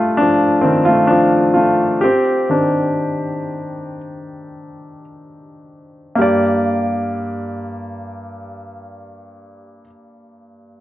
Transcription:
0.00 1.98 G3 soft
0.00 0.88 A3 medium
0.00 0.16 D4 soft
0.00 0.85 F4 medium
0.17 0.31 F3 medium
0.17 0.28 D4 medium
0.61 0.85 D#3 medium
0.61 0.86 C4 medium
0.85 0.93 A3 medium
0.85 0.90 F4 medium
1.07 1.53 F3 medium
1.07 1.56 D4 medium
1.54 2.00 A3 medium
1.54 2.03 F4 medium
2.01 2.49 C4 medium
2.01 5.02 G4 medium
2.50 3.96 D#3 soft
2.50 3.96 C4 soft
2.50 3.96 D4 soft
6.16 9.82 G2 soft
6.16 9.79 A#3 medium
6.16 9.83 G4 soft
6.22 9.86 D5 medium

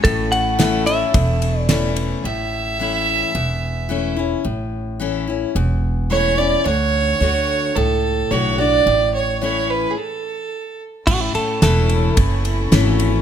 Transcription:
0.00 2.21 C#4 medium
0.00 2.22 E4 medium
0.00 0.33 A4 loud
0.00 2.22 A4 medium
0.05 1.02 A1 medium
0.05 1.09 A2 medium
0.05 kick loud
0.05 ride medium
0.32 0.86 F#5 loud
0.32 ride medium
0.59 0.85 E3 medium
0.59 0.86 A3 medium
0.59 0.86 C#4 medium
0.59 0.85 E4 medium
0.59 snare loud
0.59 ride medium
0.86 1.14 C#4 medium
0.86 1.13 E4 medium
0.86 1.60 E5 medium
0.86 ride medium
1.14 2.12 E1 medium
1.14 2.19 E2 medium
1.14 kick loud
1.14 ride medium
1.42 ride medium
1.60 1.93 D5 medium
1.69 2.22 E3 medium
1.69 2.22 A3 medium
1.69 2.22 C#4 medium
1.69 2.23 E4 medium
1.69 snare loud
1.69 ride medium
1.96 ride medium
2.24 3.22 A1 medium
2.24 3.30 A2 medium
2.24 4.13 E5 loud
2.80 3.32 E3 soft
2.80 3.32 A3 soft
2.80 3.33 C#4 medium
2.80 3.33 E4 medium
3.35 4.33 E1 medium
3.35 4.40 E2 medium
3.89 4.16 E3 medium
3.89 4.16 A3 soft
3.89 4.17 C#4 medium
3.89 4.15 E4 medium
4.16 4.45 C#4 soft
4.16 4.43 E4 soft
4.45 5.43 A1 medium
4.45 5.50 A2 medium
5.00 5.26 E3 medium
5.00 5.27 A3 medium
5.00 5.27 C#4 medium
5.00 5.26 E4 medium
5.27 5.55 C#4 soft
5.27 5.54 E4 soft
5.55 6.53 E1 medium
5.55 6.60 E2 medium
6.10 6.37 E3 soft
6.10 6.37 A3 soft
6.10 6.38 C#4 medium
6.10 6.37 E4 soft
6.10 6.39 C#5 medium
6.37 6.66 C#4 soft
6.37 6.65 E4 medium
6.37 6.65 D5 medium
6.65 7.15 D2 medium
6.65 7.19 D3 medium
6.65 7.77 C#5 loud
7.20 7.68 D2 medium
7.20 7.73 D3 medium
7.20 7.74 A3 medium
7.20 7.74 D4 medium
7.20 7.74 F#4 medium
7.76 8.23 C#2 medium
7.76 8.81 A2 medium
7.76 8.32 A4 medium
8.31 8.78 B1 medium
8.31 8.58 D3 soft
8.31 8.58 A3 soft
8.31 8.58 D4 medium
8.31 8.57 F#4 medium
8.31 8.59 C#5 medium
8.58 8.86 D4 soft
8.58 8.85 F#4 medium
8.58 9.10 D5 medium
8.86 9.84 A1 medium
8.86 9.91 A2 medium
9.14 9.40 C#5 medium
9.41 9.94 E3 soft
9.41 9.94 A3 soft
9.41 9.95 C#4 medium
9.41 9.95 E4 medium
9.41 9.72 C#5 medium
9.70 9.92 B4 medium
9.91 9.99 G#4 soft
9.98 10.80 A4 medium
11.07 11.33 A1 medium
11.07 12.12 A2 medium
11.07 13.22 C#4 medium
11.07 13.22 E4 medium
11.07 11.21 F#4 loud
11.07 13.22 A4 medium
11.07 kick loud
11.07 crash loud
11.21 11.34 E4 medium
11.35 11.62 A4 medium
11.35 muted upright bass stroke soft
11.35 ride medium
11.62 12.16 E1 loud
11.62 12.15 E3 medium
11.62 12.15 A3 medium
11.62 12.15 C#4 medium
11.62 12.16 E4 medium
11.62 12.16 A4 loud
11.62 snare loud
11.62 ride medium
11.89 ride medium
12.17 12.71 F#1 medium
12.17 13.22 E2 medium
12.17 kick loud
12.17 ride medium
12.45 ride medium
12.72 13.22 G#1 medium
12.72 13.22 E3 medium
12.72 13.22 A3 medium
12.72 13.22 C#4 medium
12.72 13.22 E4 medium
12.72 snare loud
12.72 ride medium
13.00 ride medium

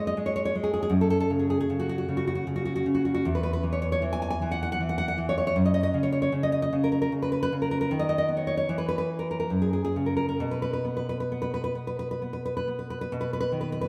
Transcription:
0.00 0.89 G#2 soft
0.00 0.16 G#3 soft
0.07 0.16 D#5 medium
0.17 0.54 G#3 soft
0.26 0.35 C#5 medium
0.36 0.44 C#5 medium
0.45 0.54 C#5 medium
0.55 0.93 G#3 soft
0.64 0.72 G#4 medium
0.74 0.81 G#4 medium
0.83 0.92 G#4 medium
0.90 3.21 F#2 medium
1.01 1.09 A4 medium
1.10 1.19 A4 medium
1.20 1.30 A4 medium
1.30 1.69 C#3 soft
1.39 1.49 G#4 medium
1.50 1.59 G#4 medium
1.61 1.70 G#4 medium
1.70 2.07 C#3 soft
1.80 1.88 F#4 medium
1.89 1.97 F#4 medium
1.98 2.08 F#4 medium
2.08 2.46 C#3 soft
2.17 2.26 F#4 medium
2.27 2.34 F#4 medium
2.35 2.46 F#4 medium
2.47 2.85 C#3 soft
2.56 2.64 F#4 medium
2.65 2.74 F#4 medium
2.76 2.86 F#4 medium
2.86 3.26 C#3 soft
2.95 3.04 F#4 medium
3.05 3.13 F#4 medium
3.14 3.25 F#4 medium
3.25 5.52 E2 medium
3.35 3.42 B4 medium
3.43 3.52 B4 medium
3.53 3.64 B4 medium
3.63 4.01 E3 soft
3.73 3.81 C#5 medium
3.82 3.91 C#5 medium
3.92 4.02 C#5 medium
4.02 4.41 E3 medium
4.13 4.21 G#5 medium
4.22 4.29 G#5 medium
4.30 4.41 G#5 medium
4.42 4.79 E3 soft
4.51 4.61 F#5 medium
4.63 4.71 F#5 medium
4.72 4.80 F#5 medium
4.80 5.17 E3 soft
4.89 4.97 F#5 medium
4.98 5.07 F#5 medium
5.08 5.18 F#5 medium
5.18 5.56 E3 soft
5.29 5.37 C#5 medium
5.38 5.46 C#5 medium
5.47 5.56 C#5 medium
5.56 5.94 F#2 medium
5.66 5.73 D#5 medium
5.74 5.82 D#5 medium
5.83 5.94 D#5 medium
5.94 6.31 C#3 soft
6.03 6.11 C#5 medium
6.12 6.21 C#5 medium
6.22 6.32 C#5 medium
6.32 6.71 C#3 medium
6.43 6.51 D#5 medium
6.52 6.61 D#5 medium
6.62 6.72 D#5 medium
6.73 7.11 C#3 soft
6.84 6.91 A#4 medium
6.92 7.00 A#4 medium
7.02 7.12 A#4 medium
7.12 7.51 C#3 soft
7.22 7.31 B4 medium
7.32 7.41 B4 medium
7.43 7.52 B4 medium
7.52 7.91 C#3 soft
7.62 7.70 A#4 medium
7.71 7.80 A#4 medium
7.81 7.90 A#4 medium
7.91 8.67 D#3 medium
7.99 8.08 D#5 medium
8.09 8.17 D#5 medium
8.18 8.29 D#5 medium
8.29 8.69 B3 soft
8.37 8.46 C#5 medium
8.47 8.56 C#5 medium
8.57 8.68 C#5 medium
8.69 9.49 E3 medium
8.78 8.87 B4 medium
8.89 8.97 B4 medium
8.98 9.09 B4 medium
9.19 9.30 A#4 medium
9.31 9.38 A#4 medium
9.40 9.51 A#4 medium
9.50 10.37 F#2 soft
9.62 9.72 G#4 soft
9.73 9.83 G#4 medium
9.85 9.95 G#4 medium
9.96 10.41 C#3 soft
10.06 10.15 A#4 soft
10.17 10.27 A#4 medium
10.29 10.40 A#4 medium
10.40 13.07 B2 soft
10.51 10.61 B4 medium
10.62 10.72 B4 medium
10.73 10.85 B4 medium
10.85 11.31 B3 soft
10.97 11.08 B4 medium
11.09 11.19 B4 medium
11.20 11.31 B4 medium
11.32 11.74 B3 soft
11.42 11.53 B4 medium
11.54 11.63 B4 medium
11.64 11.76 B4 medium
11.75 12.21 B3 soft
11.87 11.98 B4 medium
11.99 12.10 B4 medium
12.11 12.23 B4 medium
12.22 12.66 B3 soft
12.33 12.44 B4 soft
12.45 12.56 B4 medium
12.57 12.68 B4 medium
12.68 13.11 B3 soft
12.79 12.89 B4 soft
12.90 13.00 B4 medium
13.01 13.11 B4 medium
13.12 13.88 B2 medium
13.21 13.31 B4 medium
13.33 13.39 B4 medium
13.40 13.51 B4 medium
13.52 13.88 D#3 soft
13.61 13.71 B4 medium
13.72 13.80 B4 medium
13.81 13.88 B4 medium

